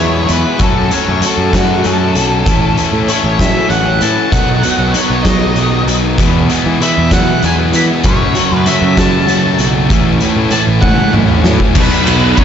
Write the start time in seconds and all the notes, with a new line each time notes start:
Already playing: E2 E3 G#4 C#5
0.00 G#3 B3 E4
0.26 E2 E3 B3 E4 G#4, closed hi-hat
0.31 B4
0.59 F#2 F#3 A3 C#4 F#4 A4, kick, closed hi-hat
0.90 F#3 A3 C#4 F#4 A4 C#5, closed hi-hat
1.08 F#2
1.22 F#3 A3 C#4 F#4 A4, closed hi-hat
1.38 F#2
1.50 F#3 A3 A4, kick, closed hi-hat
1.54 C#4 F#4, snare
1.84 F#2 F#3 A3 C#4 F#4 A4, closed hi-hat
2.15 B1 F#3 A3 C#4 A4, closed hi-hat
2.46 A1 A2 E3 A3 C#4 E4 A4, kick, closed hi-hat
2.75 A2 E3 C#4 A4, closed hi-hat
2.79 A3 C#4 E4
2.93 A2
3.08 A2 E3 A3 C#4 E4 A4 C#5, closed hi-hat
3.24 A1
3.38 A2 E3 A3 C#4 E4 A4 E5, kick, snare, closed hi-hat
3.69 A1 A2 E3 A3 C#4 E4 A4 F#5, closed hi-hat
4.01 A2 E3 A3 C#4 A4 A5, closed hi-hat
4.31 B1 B2 D#3 F#3 B3 D#4 F#5, kick, closed hi-hat
4.63 B2 D#3 F#3 B3 D#4, closed hi-hat
4.79 B1
4.92 B2 D#3 F#3 B3 C#5, closed hi-hat
4.96 D#4
5.10 B1
5.23 B2 D#3 D#5, kick, snare, closed hi-hat
5.27 F#3 B3 D#4
5.56 B1 B2 D#3 F#3 B3 D#4, closed hi-hat
5.87 B1, closed hi-hat
6.18 E2 B2 E3 G#3 B3 E4, kick, closed hi-hat
6.50 E2 B2 E3 G#3 B3 E4, closed hi-hat
6.66 E3
6.79 E2 B2 E3 G#3 B3 E4 E5, closed hi-hat
6.98 E2
7.11 E2 B2 E3 G#3 B3 E4 F#5, kick, snare, closed hi-hat
7.43 E2 B2 E3 G#3 B3 E4 G#5, closed hi-hat
7.73 E3 B5, closed hi-hat
8.03 F#2 C#3 F#3 A3 C#4 F#4 C#5, kick, closed hi-hat
8.35 F#2 C#3 F#3 A3 C#4 F#4, closed hi-hat
8.52 F#2 B4
8.66 F#2 C#3 F#3 A3 C#4 F#4 E5, closed hi-hat
8.82 F#2
8.97 F#2 C#3 F#3 A3 C#4 F#4 A5, kick, snare, closed hi-hat
9.28 F#2 C#3 F#3 A3 C#4 F#4, closed hi-hat
9.59 B1, closed hi-hat
9.90 A1 A2 E3 A3 C#4 E4, kick, closed hi-hat
10.21 A2 E3 A3 C#4 E4, closed hi-hat
10.37 A2
10.51 A2 E3 A3 C#4 E4 A5, closed hi-hat
10.67 A1
10.81 A2 E3 F#5, kick, high tom
10.85 A3 C#4 E4
10.97 high tom
11.13 A1 A2 E3 A3 C#4 E4, mid tom
11.28 mid tom
11.44 A2, snare
11.60 kick
11.73 B1 B2 F#3 B3 D#4 F#4 B4, kick, crash
11.81 B4
12.06 B2 F#3 B3 D#4, ride
12.35 F#2 B2 F#3 B3 D#4 C#5, kick, ride